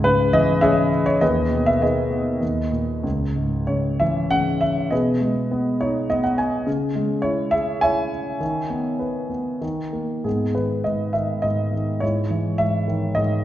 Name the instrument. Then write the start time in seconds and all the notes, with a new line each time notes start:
grand piano
Already playing: C#2 G#2
0.04 C#3 B4
0.33 E3 D#5
0.61 C#3 G#4 C#5 E5
1.06 C#5
1.21 D#2 G#4 B4 D#5
1.51 B2
1.66 E5
1.80 D#3 G#4 B4 D#5
2.10 B3
2.41 D#2
2.72 A#2
3.03 C#2
3.36 G#2
3.67 C#3 C#5
4.00 E3 E5
4.31 C#3 F#5
4.61 E5
4.91 B2 G#4 B4 D#5
5.21 G#3
5.51 B3
5.80 D#4 C#5
6.10 B3 D#5
6.24 F#5
6.38 G#5
6.67 C#3
6.95 G#3
7.22 E4 C#5
7.51 G#4 E5
7.81 E4 C#5 E5 G#5
8.40 D#3
8.70 B3
8.99 B4
9.30 B3
9.61 D#3
9.93 A#3
10.24 G#2 B3 G#4
10.55 D#3 B4
10.84 G#2 D#5
11.13 D#3 E5
11.42 G#2 D#5
11.73 D#3
12.00 G#2 E4 C#5
12.30 E3
12.58 G#2 E5
12.88 D#3
13.15 G#2 D#5